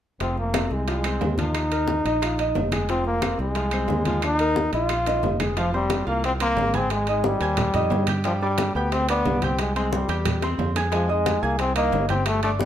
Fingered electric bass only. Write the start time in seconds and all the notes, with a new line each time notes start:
0.20 F1
0.71 C2
1.22 D#2
2.05 A#1
2.55 F1
3.39 C2
3.89 D#2
4.73 A#1
5.22 F1
6.07 C2
6.56 G#1
7.40 D#2
7.74 F2
7.91 G2
8.75 D2
9.25 C2
10.08 E2
10.58 F2
11.43 C2
11.92 G1